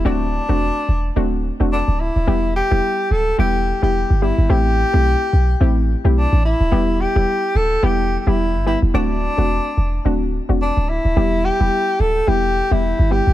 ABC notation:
X:1
M:4/4
L:1/16
Q:"Swing 16ths" 1/4=108
K:Em
V:1 name="Tenor saxophone"
D8- D2 z2 D2 E2- | E2 G4 A2 G3 G3 E2 | G8- G2 z2 D2 E2- | E2 G4 A2 G2- G/2 G/2 E3 E2 |
D8- D2 z2 D2 E2- | E2 G4 A2 G3 E3 G2 |]
V:2 name="Synth pluck"
[A,CDF]3 [A,CDF] z4 [A,CDF]2 z [A,CDF] z4 | [G,B,EG]3 [G,B,EG] z4 [G,B,EG]2 z [G,B,EG]3 [G,B,EG]2 | [A,CEG]3 [A,CEG] z4 [A,CEG]2 z [A,CEG] z4 | [G,B,EG]3 [G,B,EG] z4 [G,B,EG]2 z [G,B,EG]3 [G,B,EG]2 |
[A,CDF]3 [A,CDF] z4 [A,CDF]2 z [A,CDF] z4 | [G,B,EG]3 [G,B,EG] z4 [G,B,EG]2 z [G,B,EG]3 [G,B,EG]2 |]
V:3 name="808-style bass" clef=bass
D,,,3 E,,,2 z E,,,2 D,,,3 E,,,2 D,,,2 D,,, | E,,,3 E,,, z2 D,,,2 E,,,3 E,,,2 G,,,2 G,,, | A,,,3 B,,,2 z B,,,2 A,,,3 B,,,2 A,,,2 D,,, | E,,,3 E,,, z2 D,,,2 E,,,3 E,,,2 G,,,2 E,,, |
D,,,3 E,,,2 z E,,,2 D,,,3 E,,,2 D,,,2 D,,, | E,,,3 E,,, z2 D,,,2 E,,,3 E,,,2 G,,,2 G,,, |]